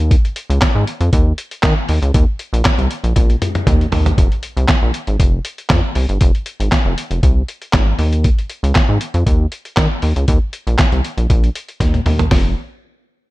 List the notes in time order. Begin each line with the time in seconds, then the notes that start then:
Already playing: D#2
0.11 kick, closed hi-hat
0.25 closed hi-hat
0.36 closed hi-hat
0.50 C#2, closed hi-hat
0.61 kick, snare, clap, closed hi-hat
0.75 G#2
0.87 closed hi-hat
1.01 F2, closed hi-hat
1.13 D#2, kick, closed hi-hat
1.38 closed hi-hat
1.51 closed hi-hat
1.63 D#3, kick, snare, clap, closed hi-hat
1.89 D#2, open hi-hat
2.02 C#2, closed hi-hat
2.14 D#2, kick, closed hi-hat
2.39 closed hi-hat
2.53 A#1, closed hi-hat
2.65 kick, snare, clap, closed hi-hat
2.78 C2, closed hi-hat
2.91 closed hi-hat
3.04 A#1, closed hi-hat
3.16 A#1, kick, closed hi-hat, high tom
3.30 closed hi-hat
3.42 closed hi-hat, mid tom
3.55 closed hi-hat, mid tom
3.67 D#2, kick, closed hi-hat, mid tom
3.81 closed hi-hat
3.92 D#2, floor tom, open hi-hat
4.06 closed hi-hat, floor tom
4.18 F1, kick, closed hi-hat
4.32 closed hi-hat
4.43 closed hi-hat
4.57 C2, closed hi-hat
4.68 kick, snare, clap, closed hi-hat
4.82 A#1
4.94 closed hi-hat
5.07 G#1, closed hi-hat
5.20 F1, kick, closed hi-hat
5.45 closed hi-hat
5.58 closed hi-hat
5.69 F2, kick, snare, clap, closed hi-hat
5.95 C2, open hi-hat
6.09 G1, closed hi-hat
6.21 F1, kick, closed hi-hat
6.35 closed hi-hat
6.46 closed hi-hat
6.60 G#1, closed hi-hat
6.72 kick, snare, clap, closed hi-hat
6.85 F1
6.98 closed hi-hat
7.11 F1, closed hi-hat
7.23 C2, kick, closed hi-hat
7.48 closed hi-hat
7.62 closed hi-hat
7.73 G#1, kick, snare, clap, closed hi-hat
7.99 D#2, open hi-hat
8.13 closed hi-hat
8.24 kick, closed hi-hat
8.39 closed hi-hat
8.50 closed hi-hat
8.63 C#2, closed hi-hat
8.75 kick, snare, clap, closed hi-hat
8.89 G#2
9.01 closed hi-hat
9.14 F2, closed hi-hat
9.26 D#2, kick, closed hi-hat
9.52 closed hi-hat
9.65 closed hi-hat
9.77 D#3, kick, snare, clap, closed hi-hat
10.02 D#2, open hi-hat
10.16 C#2, closed hi-hat
10.28 D#2, kick, closed hi-hat
10.53 closed hi-hat
10.67 A#1, closed hi-hat
10.78 kick, snare, clap, closed hi-hat
10.92 C2, closed hi-hat
11.05 closed hi-hat
11.18 A#1, closed hi-hat
11.30 A#1, kick, closed hi-hat
11.44 closed hi-hat
11.55 closed hi-hat
11.69 closed hi-hat
11.80 D#2, kick, snare, closed hi-hat
11.94 closed hi-hat, high tom
12.06 D#2, mid tom, open hi-hat
12.19 closed hi-hat, floor tom
12.31 F1, kick, snare, open hi-hat